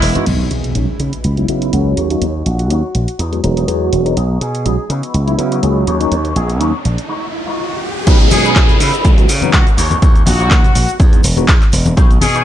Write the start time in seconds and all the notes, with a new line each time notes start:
Already playing: G#3 B3 E4 B4 D#5 F#5
0.02 E1, muted clean electric guitar stroke, open hi-hat
0.15 G#3 B3 D#4 F#4, closed hi-hat, high conga, maracas
0.26 B1 D#4 G#4 C#5, closed hi-hat, crash, impact
0.51 B2 G#4, closed hi-hat
0.64 closed hi-hat
0.75 B1 G#3 C#4 D#4 F#4 G#4 C#5, closed hi-hat
0.99 C#3 D#4 E4 F#4 B4, closed hi-hat
1.13 closed hi-hat
1.24 C#2, closed hi-hat
1.37 F#3 B3 D#4 E4, closed hi-hat
1.48 C#3 F#3 B3 D#4 E4, muted clean electric guitar stroke, closed hi-hat
1.61 D#4 E4 F#4 B4, closed hi-hat
1.72 C#2 F#3 A#3 C#4 F#4 G#4, closed hi-hat
1.97 D#2 D#4 F#4 C#5, closed hi-hat
2.10 F#3 A#3 C#4 D#4, closed hi-hat
2.22 D#2, closed hi-hat
2.46 A#1 F#4, closed hi-hat
2.59 closed hi-hat
2.70 D#2 F#3 A#3 C#4 D#4 F#4 C#5, closed hi-hat
2.95 A#1, muted clean electric guitar stroke, closed hi-hat
3.08 closed hi-hat
3.19 E2 D#4 F#4 G#4, closed hi-hat
3.32 F#3 G#3 B3 F#4, closed hi-hat
3.43 E1 F#3 G#3 B3 D#4, muted clean electric guitar stroke, closed hi-hat
3.56 D#4 F#4 G#4, closed hi-hat
3.68 E2 F#3 G#3 B3 F#4, closed hi-hat
3.92 E1, closed hi-hat
4.05 F#3 G#3 B3 D#4, closed hi-hat
4.16 B1 C#4 D#4 G#4, closed hi-hat, riser
4.41 B2 G#4, closed hi-hat
4.55 closed hi-hat
4.65 B1 G#3 C#4 D#4 F#4 G#4, closed hi-hat
4.89 C#3 B3 D#4 E4 F#4, closed hi-hat
5.03 closed hi-hat
5.14 C#2, closed hi-hat
5.27 F#3 B3 D#4 E4, closed hi-hat
5.38 C#3 F#3 B3 D#4 E4, closed hi-hat
5.51 B3 D#4 E4 F#4, closed hi-hat
5.62 C#2 F#3 A#3 C#4 G#4, closed hi-hat
5.87 D#2 C#4 D#4 F#4, closed hi-hat
6.00 F#3 A#3 C#4 D#4, closed hi-hat
6.12 D#2, closed hi-hat
6.25 closed hi-hat
6.36 A#1 G#4, closed hi-hat
6.50 closed hi-hat
6.60 D#2 F#3 A#3 C#4 D#4 F#4, closed hi-hat
6.84 A#1, muted clean electric guitar stroke, closed hi-hat
6.98 closed hi-hat
7.09 G#3 D#4 F#4
7.33 muted clean electric guitar stroke
7.46 G#3 D#4 F#4
8.06 B1 F#3 G#3 C#4 D#4 G#4 B4, kick, closed hi-hat, crash, downlifter, cabasa, maracas
8.20 closed hi-hat, cabasa
8.30 B2 G#4, muted clean electric guitar stroke, open hi-hat, high conga, cabasa, maracas
8.44 C#4 D#4 G#4 B4, closed hi-hat, cabasa, maracas
8.55 B1 F#3 G#3 C#4 D#4, kick, clap, closed hi-hat, cabasa, maracas
8.69 closed hi-hat, high conga, low conga, cabasa
8.79 C#3 D#4 E4 F#4 B4, open hi-hat, cabasa, maracas
8.94 closed hi-hat, cabasa, maracas
9.05 C#2, kick, closed hi-hat, high conga, cabasa, maracas
9.17 E3 F#3 B3 F#4, muted clean electric guitar stroke, closed hi-hat, cabasa
9.28 C#3, muted clean electric guitar stroke, open hi-hat, cabasa, maracas
9.41 E3 F#3 B3 D#4, closed hi-hat, high conga, cabasa, maracas
9.53 C#2 F#4, kick, clap, closed hi-hat, cabasa, maracas
9.67 closed hi-hat, cabasa
9.77 D#2 D#4 F#4 A#4 C#5, open hi-hat, cabasa, maracas
9.91 closed hi-hat, high conga, cabasa, maracas
10.02 D#2, kick, closed hi-hat, cabasa, maracas
10.15 closed hi-hat, cabasa
10.26 A#1 F#4, muted clean electric guitar stroke, open hi-hat, high conga, cabasa, maracas
10.39 D#4 F#4 A#4 C#5, closed hi-hat, cabasa, maracas
10.51 D#2 F#3 A#3 C#4 D#4, kick, clap, closed hi-hat, cabasa, maracas
10.64 closed hi-hat, high conga, low conga, cabasa
10.75 A#1, open hi-hat, cabasa, maracas
10.88 closed hi-hat, cabasa, maracas
10.99 E2, muted clean electric guitar stroke, kick, closed hi-hat, high conga, cabasa, maracas
11.13 G#3 B3 D#4 B4, muted clean electric guitar stroke, closed hi-hat, cabasa
11.23 E1, muted clean electric guitar stroke, open hi-hat, cabasa, maracas
11.37 G#3 B3 D#4 F#4, closed hi-hat, high conga, cabasa, maracas
11.48 E2, kick, clap, closed hi-hat, cabasa, maracas
11.62 clap, closed hi-hat, cabasa
11.72 E1, muted clean electric guitar stroke, open hi-hat, cabasa, maracas
11.85 closed hi-hat, high conga, cabasa, maracas
11.97 B1 D#4 G#4 B4 C#5, kick, closed hi-hat, cabasa, maracas
12.11 closed hi-hat, cabasa
12.21 B2 G#4, muted clean electric guitar stroke, open hi-hat, high conga, cabasa, maracas
12.34 D#4 G#4 B4 C#5, closed hi-hat, cabasa, maracas